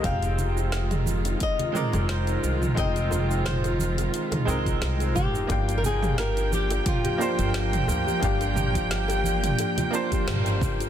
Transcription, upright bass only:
X:1
M:4/4
L:1/16
Q:"Swing 16ths" 1/4=88
K:Fdor
V:1 name="Upright bass" clef=bass
F,,,8 z3 F,,,3 C,, z | F,,,8 z2 C,,2 C,,2 A,,, F,,, | G,,,8 z3 G,,,3 D,, z | G,,,8 z4 G,,,4 |]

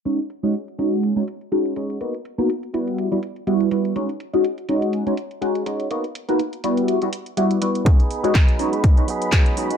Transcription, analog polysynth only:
X:1
M:4/4
L:1/16
Q:"Swing 16ths" 1/4=123
K:G#m
V:1 name="Analog polysynth"
[G,CDF] z2 [G,CDF] z2 [G,CDF]3 [G,CDF] z2 [G,CDF]2 [G,CDF]2 | [A,B,DF] z2 [A,B,DF] z2 [=G,B,EF]3 [G,B,EF] z2 [G,B,EF]2 [G,B,EF]2 | [G,CDF] z2 [G,CDF] z2 [G,CDF]3 [G,CDF] z2 [G,CDF]2 [G,CDF]2 | [A,B,DF] z2 [A,B,DF] z2 [=G,B,EF]3 [G,B,EF] z2 [G,B,EF]2 [G,B,EF]2 |
[G,CDF] z2 [G,CDF] z2 [G,CDF]3 [G,CDF] z2 [G,CDF]2 [G,CDF]2 |]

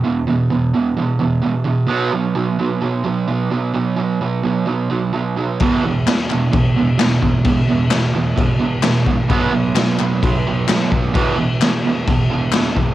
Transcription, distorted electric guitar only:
X:1
M:4/4
L:1/8
Q:1/4=130
K:Bmix
V:1 name="Distorted electric guitar" clef=bass
[E,,B,,] [E,,B,,] [E,,B,,] [E,,B,,] [E,,B,,] [E,,B,,] [E,,B,,] [E,,B,,] | [B,,F,B,] [B,,F,] [B,,F,] [B,,F,] [B,,F,] [B,,F,] [B,,F,] [B,,F,] | [B,,F,] [B,,F,] [B,,F,] [B,,F,] [B,,F,] [B,,F,] [B,,F,] [B,,F,] | [E,,B,,E,] [E,,B,,] [E,,B,,] [E,,B,,] [E,,B,,] [E,,B,,] [E,,B,,] [E,,B,,] |
[E,,B,,] [E,,B,,] [E,,B,,] [E,,B,,] [E,,B,,] [E,,B,,] [E,,B,,] [E,,B,,] | [B,,F,B,] [B,,F,] [B,,F,] [B,,F,] [B,,F,] [B,,F,] [B,,F,] [B,,F,] | [E,,B,,E,] [E,,B,,] [E,,B,,] [E,,B,,] [E,,B,,] [E,,B,,] [E,,B,,] [E,,B,,] |]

